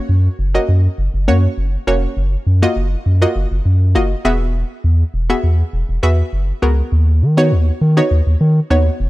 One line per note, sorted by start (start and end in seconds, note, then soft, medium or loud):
0.00 0.38 A#3 medium
0.00 0.38 C#4 medium
0.00 0.38 F#4 medium
0.00 0.38 C#5 medium
0.09 0.28 F#2 loud
0.39 0.58 F#1 loud
0.54 1.13 A#3 medium
0.54 1.13 C#4 medium
0.54 1.13 F#4 medium
0.54 1.13 D#5 medium
0.69 0.88 F#2 loud
0.98 1.09 F#1 loud
1.14 1.29 F#1 medium
1.28 1.47 F#2 loud
1.28 1.75 A#3 medium
1.28 1.75 C#4 medium
1.28 1.75 F#4 medium
1.28 1.75 C#5 medium
1.58 1.77 F#1 medium
1.87 2.07 F1 medium
1.87 2.17 A#3 medium
1.87 2.17 C#4 medium
1.87 2.17 F#4 medium
1.87 2.17 C#5 medium
2.17 2.36 F#1 loud
2.47 2.66 F#2 medium
2.62 3.08 A#3 medium
2.62 3.08 F4 medium
2.62 3.08 F#4 medium
2.62 3.08 D#5 loud
2.76 2.96 F#1 loud
3.06 3.25 F#2 loud
3.22 3.80 A#3 medium
3.22 3.80 F4 medium
3.22 3.80 F#4 medium
3.22 3.80 D#5 loud
3.36 3.46 F#1 loud
3.52 3.61 F#1 loud
3.65 3.97 F#2 loud
3.95 4.14 F#1 medium
3.95 4.25 A#3 medium
3.95 4.25 F4 medium
3.95 4.24 F#4 medium
3.95 4.25 D#5 medium
4.25 4.63 E1 loud
4.25 5.08 B3 medium
4.25 5.08 F#4 medium
4.25 5.08 G#4 medium
4.25 5.09 E5 loud
4.84 5.04 E2 loud
5.14 5.33 E1 loud
5.30 5.88 B3 medium
5.30 5.88 F#4 medium
5.30 5.88 G#4 medium
5.30 5.88 E5 medium
5.44 5.63 E2 medium
5.73 5.84 E1 loud
5.89 5.98 E1 medium
6.03 6.22 E2 medium
6.03 6.50 B3 medium
6.03 6.50 F#4 medium
6.03 6.50 G#4 medium
6.03 6.50 E5 loud
6.33 6.52 F#1 medium
6.62 6.82 C#2 medium
6.62 6.92 B3 medium
6.62 6.92 F#4 medium
6.62 6.92 G#4 medium
6.62 6.92 A#4 medium
6.92 7.23 D#2 loud
7.22 7.53 D#3 medium
7.37 7.83 B3 medium
7.37 7.83 D#4 medium
7.37 7.83 F#4 medium
7.37 7.84 C#5 loud
7.52 7.71 D#2 loud
7.81 8.01 D#3 loud
7.97 8.55 B3 medium
7.97 8.55 D#4 medium
7.97 8.55 F#4 medium
7.97 8.55 C#5 medium
8.11 8.21 D#2 loud
8.27 8.36 D#2 medium
8.41 8.60 D#3 loud
8.70 8.90 D#2 medium
8.70 9.10 B3 medium
8.70 9.10 D#4 medium
8.70 9.10 F#4 medium
8.70 9.10 C#5 medium
9.00 9.10 F1 loud